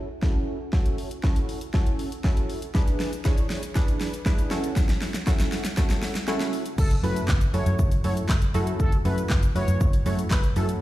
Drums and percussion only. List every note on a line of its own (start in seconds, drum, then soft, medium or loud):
0.23 kick loud
0.23 snare medium
0.73 kick loud
0.73 snare medium
0.86 closed hi-hat medium
0.98 open hi-hat medium
1.11 closed hi-hat medium
1.23 kick loud
1.23 snare medium
1.36 closed hi-hat medium
1.49 open hi-hat medium
1.61 closed hi-hat medium
1.74 kick loud
1.74 snare medium
1.86 closed hi-hat medium
1.99 open hi-hat medium
2.12 closed hi-hat medium
2.24 kick loud
2.24 snare medium
2.37 closed hi-hat medium
2.50 open hi-hat medium
2.62 closed hi-hat medium
2.75 kick loud
2.75 snare medium
2.75 shaker medium
2.87 closed hi-hat medium
2.87 shaker medium
3.00 snare medium
3.00 open hi-hat medium
3.00 shaker soft
3.13 closed hi-hat medium
3.13 shaker medium
3.25 kick loud
3.25 snare medium
3.25 shaker medium
3.38 closed hi-hat medium
3.38 shaker medium
3.50 snare medium
3.50 open hi-hat medium
3.50 shaker medium
3.63 closed hi-hat medium
3.63 shaker medium
3.75 kick loud
3.75 snare medium
3.75 shaker medium
3.88 closed hi-hat medium
3.88 shaker medium
4.01 snare medium
4.01 open hi-hat medium
4.01 shaker medium
4.14 closed hi-hat medium
4.14 shaker medium
4.26 kick loud
4.26 snare loud
4.26 shaker medium
4.38 closed hi-hat medium
4.38 shaker medium
4.51 snare loud
4.51 open hi-hat medium
4.51 shaker medium
4.64 closed hi-hat medium
4.64 shaker medium
4.76 kick loud
4.76 snare loud
4.76 shaker medium
4.89 snare loud
4.89 closed hi-hat medium
4.89 shaker medium
5.02 snare loud
5.02 open hi-hat medium
5.02 shaker soft
5.14 snare loud
5.14 closed hi-hat medium
5.14 shaker medium
5.27 kick loud
5.27 snare loud
5.27 shaker medium
5.40 snare loud
5.40 closed hi-hat medium
5.40 shaker medium
5.52 snare loud
5.52 open hi-hat medium
5.52 shaker medium
5.65 snare loud
5.65 closed hi-hat medium
5.65 shaker medium
5.77 kick loud
5.77 snare loud
5.77 shaker medium
5.90 snare loud
5.90 closed hi-hat medium
5.90 shaker medium
6.03 snare loud
6.03 open hi-hat medium
6.03 shaker medium
6.15 snare loud
6.15 closed hi-hat medium
6.15 shaker medium
6.28 snare loud
6.28 shaker medium
6.40 snare loud
6.40 closed hi-hat medium
6.40 shaker medium
6.53 open hi-hat medium
6.53 shaker medium
6.66 closed hi-hat medium
6.66 shaker medium
6.78 kick loud
6.78 crash loud
6.78 shaker medium
6.91 closed hi-hat medium
6.91 shaker medium
7.04 open hi-hat medium
7.04 shaker medium
7.16 closed hi-hat medium
7.16 shaker medium
7.28 kick loud
7.28 snare loud
7.28 clap loud
7.28 shaker medium
7.41 closed hi-hat medium
7.41 shaker medium
7.54 open hi-hat medium
7.54 shaker medium
7.66 closed hi-hat medium
7.66 shaker medium
7.79 kick loud
7.79 shaker medium
7.92 closed hi-hat medium
7.92 shaker medium
8.04 open hi-hat medium
8.04 shaker medium
8.17 closed hi-hat medium
8.17 shaker medium
8.29 kick loud
8.29 snare loud
8.29 clap loud
8.29 shaker medium
8.42 closed hi-hat medium
8.42 shaker medium
8.54 open hi-hat medium
8.54 shaker medium
8.67 closed hi-hat medium
8.67 shaker medium
8.80 kick loud
8.80 shaker medium
8.92 closed hi-hat medium
8.92 shaker medium
9.05 open hi-hat medium
9.05 shaker medium
9.18 closed hi-hat medium
9.18 shaker medium
9.29 kick loud
9.29 snare loud
9.29 clap loud
9.29 shaker medium
9.43 closed hi-hat medium
9.43 shaker medium
9.56 open hi-hat medium
9.56 shaker medium
9.68 closed hi-hat medium
9.68 shaker medium
9.81 kick loud
9.81 shaker medium
9.93 closed hi-hat medium
9.93 shaker medium
10.06 open hi-hat medium
10.06 shaker medium
10.19 closed hi-hat medium
10.19 shaker medium
10.30 kick loud
10.30 snare loud
10.30 clap loud
10.30 shaker medium
10.43 closed hi-hat medium
10.43 shaker medium
10.56 open hi-hat medium
10.56 shaker medium
10.69 closed hi-hat medium
10.69 shaker medium